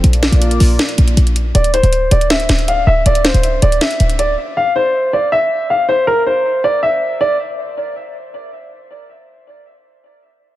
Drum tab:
HH |xxxxxxo-xxxxxxx-|xxxxx-xxxxxxx---|xxxxx-xxxxxxx---|----------------|
SD |--o-----o-------|--------o-o-----|--o-----o-------|----------------|

HH |----------------|----------------|----------------|
SD |----------------|----------------|----------------|